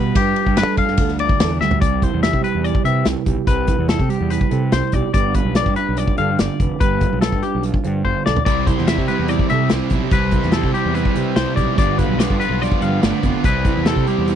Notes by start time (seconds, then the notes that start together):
Already playing: B2 G3 F4 B4
0.15 G2 G4 B4, kick, ride
0.36 ride
0.46 G2, kick
0.57 D4 A4 B4, snare, ride
0.67 G3
0.77 F4 F5, kick, ride
0.88 G2, snare
0.97 D2 D3 A4, kick, ride
1.08 B4, snare
1.19 F4 D5, ride
1.29 kick
1.40 E2 A4, snare, ride
1.50 B4
1.61 D2 G3 F4 E5, snare
1.71 floor tom
1.81 C2 C3 D5, kick, closed hi-hat
2.02 E4 C5, kick, closed hi-hat
2.14 E2
2.22 G4 E5, snare, closed hi-hat
2.33 C3, kick
2.41 G3 B4, closed hi-hat
2.55 E2
2.63 E4 D5, closed hi-hat
2.75 kick
2.83 C3 B4 E5, closed hi-hat
3.05 C2 E4, snare, closed hi-hat
3.26 B1 G4, kick, closed hi-hat
3.47 C2 C3 B4, kick, closed hi-hat
3.67 E4, kick, closed hi-hat
3.78 E2
3.89 E4 A4, snare, closed hi-hat
3.99 C3 G4, kick
4.08 G3 G4, closed hi-hat
4.20 E2
4.30 E4 B4, closed hi-hat
4.41 kick
4.50 C3 A4, closed hi-hat
4.62 B4
4.72 C2 E4 C5, snare, closed hi-hat
4.92 B1 G4 D5, kick, closed hi-hat
5.14 G1 G3 D4 F4 B4 D5, kick, closed hi-hat
5.34 F4 B4, kick, closed hi-hat
5.45 B1
5.55 B4 D5, snare, closed hi-hat
5.66 G2, kick
5.76 D4 B4, closed hi-hat
5.89 B1
5.97 F4 D5, closed hi-hat
6.08 kick
6.18 G2 D3 A4 F5, closed hi-hat
6.29 C5
6.39 G1 F4 D5, snare, closed hi-hat
6.60 F1 B4, kick, closed hi-hat
6.80 G1 G3 B4, kick, closed hi-hat
7.01 F4, kick, closed hi-hat
7.13 B1
7.21 A4 B4, snare, closed hi-hat
7.32 G2, kick
7.43 D4 G4, closed hi-hat
7.55 B1
7.63 F4, closed hi-hat
7.74 kick
7.84 G2 D3 C5, closed hi-hat
8.05 G1 F4 C5, kick
8.26 B1 A4 D5, snare
8.37 B4, floor tom
8.45 C2 C3 G3 C4 D5, kick, closed hi-hat
8.49 E4
8.67 E4 C5, kick, closed hi-hat
8.78 E2, snare
8.87 C3 G3 C4 E4 E5, snare, closed hi-hat
8.98 C3 G4, kick
9.08 G3 C4 E4 B4, closed hi-hat
9.19 E2
9.28 E4 D5, closed hi-hat
9.39 kick
9.50 C3 A4 E5, closed hi-hat
9.61 B4
9.70 C2 C3 G3 C4 E4, snare, closed hi-hat
9.74 E4
9.90 B1 E4, kick, closed hi-hat
9.95 G3 C4
10.03 G4
10.11 C2 C3 G3 C4 E4 B4, kick, closed hi-hat
10.31 E4, kick, closed hi-hat
10.43 E2, snare
10.52 C3 G3 G4 A4, snare, closed hi-hat
10.56 C4 E4
10.63 C3, kick
10.72 G3 C4 E4 G4, closed hi-hat
10.77 G3
10.85 E2
10.93 E4 B4, closed hi-hat
11.05 kick
11.14 C3 B4, closed hi-hat
11.35 C2 C3 G3 C4 E4 C5, snare, closed hi-hat
11.56 B1 G3 C4 E4 G4 D5, kick, closed hi-hat
11.75 G1 G2 D3 F3 G3 B3 D5, kick, closed hi-hat
11.80 F4
11.98 F4 B4, kick, closed hi-hat
12.09 B1
12.19 G2 D3 F3 B3 F4 B4 D5, snare, closed hi-hat
12.30 G2, kick
12.38 D4 F4 B4, closed hi-hat
12.43 F3 B3
12.49 B1
12.62 F4 D5, closed hi-hat
12.72 kick
12.81 G2 D3 F5, closed hi-hat
13.01 G1 D3 F3 A3 D5, snare, closed hi-hat
13.05 B3 F4
13.23 F1 F3 B3 F4, kick, closed hi-hat
13.44 C2 C3 G3 C4 E4 B4, kick, closed hi-hat
13.65 E4, kick, closed hi-hat
13.76 E2
13.86 C3 G3 C4 E4 A4, snare, closed hi-hat
13.90 G4
13.96 C3, kick
14.06 G3 C4 E4 G4, closed hi-hat
14.18 E2
14.28 E4, closed hi-hat